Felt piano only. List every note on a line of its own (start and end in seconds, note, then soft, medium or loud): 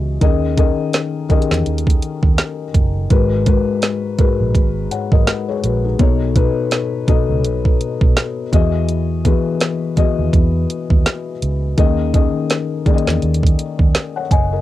0.00 0.23 E3 medium
0.00 0.23 B3 medium
0.00 0.23 F#4 medium
0.00 0.23 G4 medium
0.00 0.22 G#4 medium
0.00 0.22 D#5 medium
0.21 0.55 D#3 medium
0.21 0.55 C#4 medium
0.21 0.55 G#4 medium
0.21 0.55 A#4 medium
0.21 0.56 D#5 loud
0.57 1.25 D#3 medium
0.57 1.25 C#4 medium
0.57 1.25 G#4 medium
0.57 1.25 A#4 medium
0.57 1.25 D#5 medium
1.29 2.64 D#3 medium
1.29 2.64 C#4 medium
1.29 1.37 G4 medium
1.29 2.65 A#4 medium
1.29 2.65 D#5 medium
1.37 2.68 G#4 medium
3.10 3.44 G#2 medium
3.10 3.44 G#3 medium
3.10 3.44 F#4 medium
3.10 3.44 A#4 medium
3.10 3.45 B4 medium
3.46 4.14 G#2 medium
3.46 4.14 G#3 medium
3.46 4.14 F#4 medium
3.46 4.14 A#4 medium
3.46 4.15 B4 loud
4.18 5.53 G#2 medium
4.18 5.54 G#3 medium
4.18 4.91 F#4 medium
4.18 4.92 A#4 medium
4.18 4.92 B4 medium
4.91 5.12 C#5 medium
4.91 5.11 F#5 medium
5.12 5.47 A#4 medium
5.12 5.47 D#5 medium
5.49 5.63 G#4 medium
5.49 5.63 C#5 medium
5.64 5.84 F#4 medium
5.64 5.83 B4 medium
5.84 5.98 D#4 medium
5.84 6.19 G#4 medium
5.99 6.33 B2 medium
5.99 6.33 B3 medium
5.99 6.33 D#4 medium
5.99 6.34 A4 medium
5.99 6.34 C#5 medium
6.35 7.03 B2 medium
6.35 7.03 B3 medium
6.35 7.03 D#4 medium
6.35 7.03 A4 medium
6.35 7.04 B4 medium
7.07 8.42 B2 medium
7.07 8.43 B3 medium
7.07 8.43 D#4 medium
7.07 8.43 A4 medium
7.07 8.43 D#5 loud
8.52 9.20 E3 medium
8.52 9.20 B3 medium
8.52 9.20 F#4 medium
8.52 9.20 G#4 medium
8.52 9.21 D#5 loud
9.25 9.92 E3 medium
9.25 9.92 B3 medium
9.25 9.93 F#4 medium
9.25 9.93 G#4 medium
9.25 9.93 B4 medium
9.96 11.32 E3 medium
9.96 11.32 B3 medium
9.96 11.32 F#4 medium
9.96 11.32 G#4 medium
9.96 11.32 D#5 medium
11.77 12.11 D#3 medium
11.77 12.12 A#3 medium
11.77 12.12 C#4 medium
11.77 12.12 G#4 medium
11.77 12.12 D#5 loud
12.13 12.81 D#3 medium
12.13 12.81 A#3 medium
12.13 12.81 C#4 medium
12.13 12.82 G#4 medium
12.13 12.82 D#5 medium
12.86 14.21 D#3 medium
12.86 14.21 A#3 medium
12.86 14.21 C#4 medium
12.86 14.21 G#4 medium
12.86 12.94 D5 medium
12.94 13.62 D#5 medium
14.16 14.31 C#5 medium
14.16 14.30 F#5 medium
14.31 14.51 D#5 medium
14.31 14.51 G#5 medium
14.52 14.61 A#4 medium
14.52 14.61 D#5 medium